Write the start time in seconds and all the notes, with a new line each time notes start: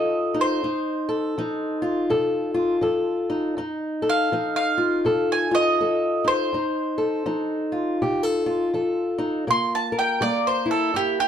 Already playing: F3 D#4 F4 A4 D#5
0.34 D#4
0.41 C5
0.63 F2 D#4
1.09 A4
1.38 F3 D#4
1.82 F4
2.10 C3 A4
2.54 F4
2.81 F3 A4
3.30 D#4
3.57 F2 D#4
4.02 A4
4.09 F5
4.32 F3 D#4
4.56 F5
4.78 F4
5.05 C3 A4
5.32 G#5
5.51 F4 D#5
5.80 F3 A4
6.24 D#4 C5
6.53 F2 D#4
6.98 A4
7.26 F3 D#4
7.72 F4
8.02 C3 G4
8.23 A4
8.46 F4
8.74 F3 A4
9.18 D#4
9.47 C3 A#3 C6
9.75 A5
9.92 A#4
9.99 G5
10.21 G3 A#3 D5
10.47 C5
10.66 E4
10.71 A4
10.94 G2 E4 G4
11.20 G4